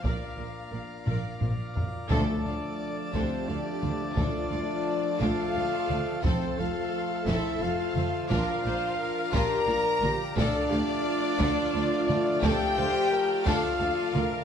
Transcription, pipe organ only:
0.03 2.06 F4 soft
0.03 2.10 A#4 medium
0.03 2.08 D5 soft
0.03 2.07 F5 soft
2.09 8.25 F3 medium
2.09 8.25 A4 medium
2.09 6.19 D5 medium
2.09 8.25 A5 loud
6.24 8.30 C5 medium
8.28 14.44 F4 medium
8.28 10.36 A#4 medium
8.28 14.44 D5 medium
8.28 14.44 F5 medium
10.37 14.44 A5 medium

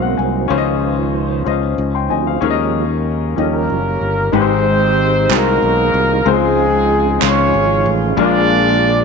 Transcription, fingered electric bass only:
0.00 0.16 B1 medium
0.19 0.48 C2 medium
0.50 1.42 C#2 medium
1.46 1.76 C#2 medium
1.78 2.08 C#2 medium
2.10 2.40 D2 medium
2.42 3.34 D#2 medium
3.38 3.68 D#2 medium
3.70 4.00 F#1 medium
4.01 4.31 G1 medium
4.33 5.26 G#1 medium
5.29 5.59 C2 medium
5.62 5.92 B1 medium
5.94 6.24 C2 medium
6.26 7.18 C#2 medium
7.22 7.52 C#2 medium
7.54 7.83 G#1 medium
7.86 8.15 A1 medium
8.17 9.04 A#1 loud

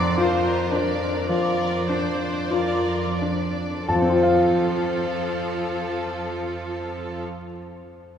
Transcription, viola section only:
0.00 0.19 D5 medium
0.19 0.73 C5 soft
0.73 1.30 A#4 soft
1.30 1.90 D5 soft
1.89 2.53 C5 soft
2.51 3.20 D5 soft
3.87 7.22 F3 soft
3.87 7.23 F4 soft

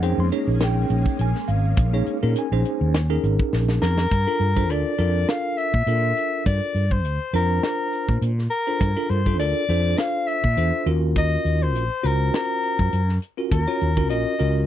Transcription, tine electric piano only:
0.03 0.27 C#4 medium
0.03 0.27 D#4 medium
0.03 0.27 G#4 medium
0.03 0.27 C5 medium
0.03 0.18 G5 medium
0.20 0.27 C6 medium
0.32 1.28 C#4 medium
0.32 1.27 D#4 medium
0.32 1.28 G#4 medium
0.32 1.28 C#5 medium
0.64 1.17 G5 medium
1.21 1.48 G#5 medium
1.48 2.32 F5 medium
1.93 2.17 C#4 medium
1.93 2.17 D#4 medium
1.93 2.17 G#4 medium
1.93 2.17 C#5 medium
2.23 2.46 C#4 medium
2.23 2.46 D#4 medium
2.23 2.46 G#4 medium
2.23 2.46 A#4 medium
2.39 3.21 G#5 medium
2.52 2.99 C#4 medium
2.52 2.99 D#4 medium
2.52 2.99 G#4 medium
2.52 2.99 C5 medium
3.10 4.05 C#4 medium
3.10 4.05 D#4 medium
3.10 4.05 G#4 medium
3.10 4.05 A#4 medium
4.27 4.50 D4 medium
4.27 4.51 F4 medium
4.27 4.51 A4 medium
4.27 4.51 A#4 medium
4.56 4.67 D4 medium
4.56 4.67 F4 medium
4.56 4.67 A4 medium
4.56 4.67 C5 medium
4.69 4.94 D4 medium
4.69 4.94 F4 medium
4.69 4.94 A4 medium
4.69 4.94 A#4 medium
4.98 5.71 D4 medium
4.98 5.72 F4 medium
4.98 5.72 A4 medium
4.98 5.72 A#4 medium
5.88 6.84 D4 medium
5.88 6.84 F4 medium
5.88 6.84 A4 medium
5.88 6.84 A#4 medium
7.34 8.30 D4 medium
7.34 8.30 F4 medium
7.34 8.30 A#4 medium
7.34 8.30 C5 medium
8.67 8.91 D4 medium
8.67 8.91 F4 medium
8.67 8.91 A4 medium
8.67 8.91 C5 medium
8.96 9.20 D4 medium
8.96 9.20 F4 medium
8.96 9.20 A4 medium
8.96 9.20 A#4 medium
9.27 9.37 D4 medium
9.27 9.37 F4 medium
9.27 9.37 A4 medium
9.27 9.37 C5 medium
9.39 9.64 D4 medium
9.39 9.64 F4 medium
9.39 9.64 A4 medium
9.39 9.64 A#4 medium
9.69 10.42 D4 medium
9.69 10.42 F4 medium
9.69 10.42 A4 medium
9.69 10.42 C5 medium
10.57 10.87 D4 medium
10.57 10.85 F4 medium
10.57 10.87 A4 medium
10.57 10.87 C5 medium
10.86 11.83 C#4 medium
10.86 11.83 F4 medium
10.86 11.83 F#4 medium
10.86 11.83 A#4 medium
12.03 13.00 C#4 medium
12.03 13.00 F4 medium
12.03 13.00 F#4 medium
12.03 13.00 C5 medium
13.38 13.61 C#4 medium
13.38 13.61 F4 medium
13.38 13.61 F#4 medium
13.38 13.61 A#4 medium
13.68 13.91 C#4 medium
13.68 13.91 F4 medium
13.68 13.91 F#4 medium
13.68 13.91 C#5 medium
13.97 14.08 C#4 medium
13.97 14.08 F4 medium
13.97 14.08 F#4 medium
13.97 14.08 A#4 medium
14.09 14.34 C#4 medium
14.09 14.34 F4 medium
14.09 14.34 F#4 medium
14.09 14.34 A#4 medium
14.39 14.66 C#4 medium
14.39 14.66 F4 medium
14.39 14.66 F#4 medium
14.39 14.66 A#4 medium

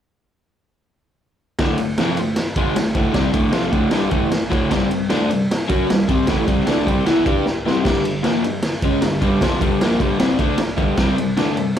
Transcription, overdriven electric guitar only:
1.60 1.78 D2 loud
1.60 1.78 A2 medium
1.60 1.79 D3 loud
1.79 1.95 D2 medium
1.79 1.95 A2 medium
1.98 2.17 F2 loud
1.98 2.18 C3 medium
1.98 2.19 F3 loud
2.20 2.35 D2 medium
2.20 2.35 A2 medium
2.57 2.75 G#2 loud
2.57 2.76 D#3 medium
2.57 2.76 G#3 loud
2.75 2.92 D2 medium
2.75 2.92 A2 medium
2.95 3.13 D2 loud
2.95 3.13 A2 medium
2.95 3.14 D3 medium
3.13 3.32 C3 loud
3.13 3.33 G3 loud
3.13 3.33 C4 loud
3.32 3.52 D2 medium
3.32 3.53 A2 medium
3.32 3.53 D3 loud
3.52 3.72 F2 loud
3.52 3.72 C3 loud
3.52 3.73 F3 loud
3.72 3.91 D2 medium
3.72 3.92 A2 loud
3.72 3.91 D3 loud
3.92 4.10 G2 loud
3.92 4.11 D3 loud
3.92 4.11 G3 loud
4.10 4.31 A2 medium
4.10 4.31 E3 loud
4.10 4.31 A3 loud
4.31 muted overdriven electric guitar stroke medium
4.50 4.70 D2 medium
4.50 4.70 A2 medium
4.50 4.71 D3 loud
4.70 4.89 C3 loud
4.70 4.90 G3 loud
4.70 4.91 C4 loud
4.90 5.06 C3 medium
4.90 5.07 G3 medium
5.10 5.29 D3 medium
5.10 5.29 A3 loud
5.10 5.30 D4 loud
5.31 5.46 C3 medium
5.31 5.46 G3 medium
5.68 5.88 F#3 medium
5.68 5.88 C#4 loud
5.68 5.88 F#4 loud
5.89 6.05 C3 medium
5.89 6.05 G3 medium
6.08 6.27 C3 medium
6.08 6.28 G3 medium
6.08 6.28 C4 loud
6.28 6.46 A2 loud
6.28 6.47 E3 loud
6.28 6.48 A3 loud
6.46 6.66 C3 medium
6.46 6.66 G3 medium
6.46 6.67 C4 medium
6.66 6.86 D3 medium
6.66 6.86 A3 loud
6.66 6.87 D4 loud
6.86 7.05 C3 medium
6.86 7.05 G3 medium
6.86 7.05 C4 medium
7.05 7.25 E3 medium
7.05 7.25 B3 medium
7.05 7.25 E4 loud
7.25 7.45 G3 medium
7.25 7.45 D4 loud
7.25 7.45 G4 medium
7.45 muted overdriven electric guitar stroke medium
7.66 7.83 C3 medium
7.66 7.84 G3 medium
7.66 7.85 C4 medium
7.84 8.03 G2 medium
7.84 8.03 D3 loud
7.84 8.04 G3 loud
8.05 8.20 G2 medium
8.05 8.21 D3 medium
8.23 8.42 A#2 medium
8.23 8.43 F3 medium
8.23 8.43 A#3 loud
8.45 8.60 G2 medium
8.45 8.60 D3 medium
8.84 9.02 C#3 loud
8.84 9.02 G#3 loud
8.84 9.03 C#4 loud
9.04 9.19 G2 medium
9.04 9.19 D3 medium
9.21 9.40 G2 medium
9.21 9.41 D3 loud
9.21 9.41 G3 loud
9.41 9.60 F2 loud
9.41 9.61 C3 loud
9.41 9.61 F3 loud
9.61 9.80 G2 medium
9.61 9.80 D3 medium
9.61 9.80 G3 medium
9.82 10.00 A#2 medium
9.82 10.00 F3 medium
9.82 10.01 A#3 loud
10.01 10.19 G2 medium
10.01 10.20 D3 loud
10.01 10.19 G3 medium
10.19 10.39 C3 medium
10.19 10.39 G3 medium
10.19 10.39 C4 loud
10.39 10.58 D3 medium
10.39 10.58 A3 loud
10.39 10.59 D4 loud
10.58 muted overdriven electric guitar stroke medium
10.77 10.97 G2 loud
10.77 10.97 D3 medium
10.77 10.97 G3 medium
10.97 11.17 C3 loud
10.97 11.17 G3 loud
10.97 11.17 C4 loud
11.19 11.34 C3 medium
11.19 11.34 G3 medium
11.37 11.56 D3 loud
11.37 11.56 A3 medium
11.37 11.56 D4 medium
11.56 11.72 C3 medium
11.56 11.73 G3 medium

